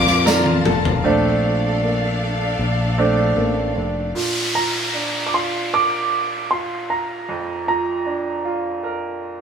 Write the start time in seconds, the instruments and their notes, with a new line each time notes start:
Already playing: fingered electric bass F2, nylon-string guitar A#2 F3 A#3 D4, string section D3 F3 A#3 F4, upright piano A#3 F4 A#4 D5, grand piano A#4, violin section D6
0.07 snare
0.25 upright piano A4 A#4 D5, violin section A#5, snare, tambourine
0.46 violin section A5, high tom
0.65 fingered electric bass F1, nylon-string guitar A4, mid tom
0.85 floor tom
1.04 fingered electric bass A#1, upright piano A3 C4 D4, string section D4 A4 D5 F5
1.82 nylon-string guitar A#3
2.59 fingered electric bass A#1, nylon-string guitar D4
2.98 upright piano A3 C4 D4
3.37 fingered electric bass A1, nylon-string guitar A#3
3.75 fingered electric bass F1, nylon-string guitar D4
4.15 upright piano A#2, downlifter
4.55 upright piano F3, grand piano A#5
4.94 upright piano D4
5.27 grand piano D6
5.33 upright piano F4, grand piano C6
5.73 upright piano A#4, grand piano D6
6.51 upright piano F4, grand piano C6
6.90 grand piano A#5
7.29 upright piano F2
7.67 upright piano F3, grand piano A#5
8.06 upright piano D4
8.45 upright piano F4
8.83 upright piano A#4